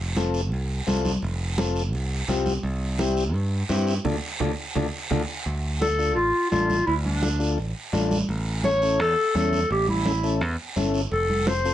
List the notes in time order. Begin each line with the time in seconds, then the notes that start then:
Already playing: F1
0.16 C4 F4 A4, high conga, short guiro
0.34 short guiro
0.52 C2, high conga, long guiro
0.87 C2 C4 F4 A4, high conga, short guiro
1.05 high conga, short guiro
1.22 F1, high conga, long guiro
1.58 C4 F4 A4, high conga, short guiro
1.75 short guiro
1.93 C2, high conga, long guiro
2.28 C2 C4 F4 G4, high conga, short guiro
2.46 high conga, short guiro
2.63 C2, high conga, long guiro
2.99 C4 E4 G4, high conga, short guiro
3.16 short guiro
3.34 G2, high conga, long guiro
3.69 G2 C4 E4 G4, high conga, short guiro
3.87 short guiro
4.05 D2 D4 F4 A4, low conga, long guiro
4.40 D2 D4 F4 A4, low conga, long guiro
4.75 D2 D4 F4 A4, low conga, long guiro
5.11 D2 D4 F4 A4, low conga, long guiro
5.46 D2, high conga, long guiro
5.81 D4 F4 A4, high conga, short guiro
5.98 D4 F4 A4, short guiro
6.15 A1 F4, high conga, long guiro
6.50 A1 D4 F4 A4, high conga, short guiro
6.70 high conga, short guiro
6.86 D2 E4, high conga, long guiro
7.04 D4, high conga
7.22 D4 F4 A4, high conga, short guiro
7.39 D4 F4 A4, short guiro
7.58 A1, high conga, long guiro
7.93 A1 D4 F4 A4, high conga, short guiro
8.11 high conga, short guiro
8.29 A1, high conga, long guiro
8.64 C#4 E4 A4 C#5, high conga, short guiro
8.82 C#4 E4 A4, short guiro
8.99 E2 A4, high conga, long guiro
9.35 E2 C#4 E4 A4, high conga, short guiro
9.53 high conga, short guiro
9.70 A1 G4, high conga, long guiro
9.88 E4, high conga
10.05 C#4 E4 A4, high conga, short guiro
10.23 C#4 E4 A4, short guiro
10.41 E2, high conga, long guiro
10.76 G1 C#4 E4 A4, high conga, short guiro
10.94 short guiro
11.12 F1 A4, high conga, long guiro
11.29 high conga
11.47 C4 F4 A4 C5, high conga, short guiro
11.65 C4 F4 A4, short guiro